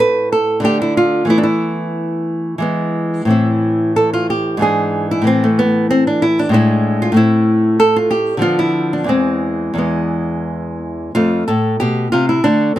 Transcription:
0.00 0.60 A2 medium
0.00 0.61 A3 soft
0.00 0.62 C4 soft
0.00 0.32 B4 medium
0.32 0.64 A4 medium
0.60 1.26 D3 medium
0.60 1.26 A3 medium
0.60 1.28 D4 soft
0.65 0.81 G4 medium
0.82 0.97 E4 medium
0.97 1.29 F4 medium
1.25 2.57 E3 soft
1.25 2.58 A3 soft
1.29 2.59 B3 soft
1.29 1.38 E4 medium
1.38 1.45 D4 medium
1.43 2.59 E4 medium
2.58 3.25 E3 medium
2.58 3.27 G#3 soft
2.58 3.28 B3 soft
3.25 4.56 A2 medium
3.25 4.57 E3 soft
3.25 4.58 C4 soft
3.30 3.95 E4 medium
3.96 4.13 A4 medium
4.13 4.30 F4 medium
4.30 4.61 G4 medium
4.57 5.23 G#2 medium
4.57 5.23 E3 soft
4.57 5.25 D4 soft
4.62 5.09 G#4 medium
5.11 5.28 E4 medium
5.22 6.48 A2 medium
5.22 6.50 E3 soft
5.27 5.43 C4 medium
5.44 5.60 A3 medium
5.59 5.90 B3 medium
5.90 6.07 C4 medium
6.07 6.24 D4 medium
6.22 6.39 E4 medium
6.39 6.52 D4 medium
6.49 7.11 A2 medium
6.49 7.14 G#3 medium
6.53 7.15 D4 medium
6.53 7.00 E4 medium
7.02 7.16 F4 medium
7.12 8.37 A2 medium
7.12 8.39 A3 soft
7.16 8.40 C4 medium
7.16 7.78 E4 medium
7.80 7.96 A4 medium
7.96 8.13 F4 medium
8.11 8.42 G4 medium
8.37 9.05 D3 medium
8.37 9.06 F3 soft
8.37 9.07 B3 soft
8.42 8.59 F4 medium
8.59 8.92 E4 medium
8.93 9.11 D4 medium
9.04 9.72 E2 soft
9.04 9.74 E3 soft
9.04 9.76 G#3 soft
9.09 9.76 C4 medium
9.74 11.09 E2 soft
9.74 11.10 E3 soft
9.74 11.11 G#3 soft
9.78 10.78 B3 soft
11.15 11.42 F2 medium
11.15 12.41 A3 soft
11.15 11.47 F4 medium
11.48 11.75 A2 medium
11.48 11.79 A4 medium
11.80 12.07 B2 medium
11.80 12.12 G4 medium
12.12 12.39 C3 medium
12.12 12.29 F4 medium
12.29 12.45 E4 medium
12.44 12.71 D3 medium
12.44 12.79 A3 soft
12.44 12.75 D4 medium
12.76 12.79 C4 medium

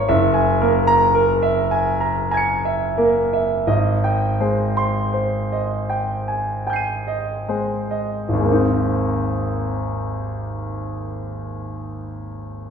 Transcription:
0.08 3.64 F#1 medium
0.08 0.48 E5 medium
0.34 0.75 G#5 medium
0.61 1.48 A#3 medium
0.61 1.02 A#4 medium
0.87 1.30 A#5 medium
1.15 1.59 A#4 medium
1.42 1.89 E5 medium
1.71 2.20 G#5 medium
2.01 2.30 A#5 soft
2.31 2.84 G#5 soft
2.31 3.63 A#5 soft
2.31 3.64 G#6 soft
2.37 3.66 C#7 soft
2.65 3.18 E5 soft
2.98 3.67 A#3 soft
2.98 3.53 A#4 soft
3.33 3.68 E5 soft
3.67 8.27 G#1 medium
3.67 4.26 D#5 soft
4.04 4.63 G5 soft
4.40 5.59 G#3 soft
4.40 5.00 C5 soft
4.77 5.37 C6 medium
5.14 5.74 C5 soft
5.52 6.13 D#5 soft
5.90 6.52 G5 soft
6.28 6.66 G#5 soft
6.67 7.33 G5 soft
6.67 8.27 G#5 soft
6.67 8.28 G6 soft
6.73 8.30 C7 soft
6.73 8.31 D#7 soft
7.07 7.75 D#5 soft
7.49 8.30 G#3 soft
7.49 8.15 C5 soft
7.91 8.31 D#5 soft
8.29 11.73 G#1 soft
8.33 11.77 D#2 soft
8.38 11.82 G#3 soft
8.44 11.88 A#3 soft
8.48 11.92 C4 soft
8.52 11.96 D#4 soft

